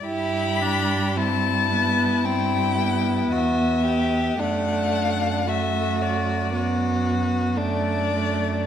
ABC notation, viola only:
X:1
M:4/4
L:1/8
Q:1/4=56
K:G
V:1 name="Viola"
E D C B, C B,3 | A,2 A,2 B,2 A, A, |]